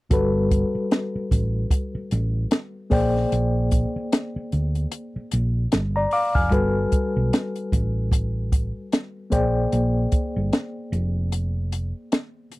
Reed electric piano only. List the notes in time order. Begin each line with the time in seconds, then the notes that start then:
0.10 G3 F#4 A4 B4
2.90 A#3 G#4 C5 D5 G5
5.96 D5 A#5
6.13 F5 D6
6.35 G#5 F6
6.51 G3 F#4 A4 B4
9.30 A#3 G#4 C5 D5 G5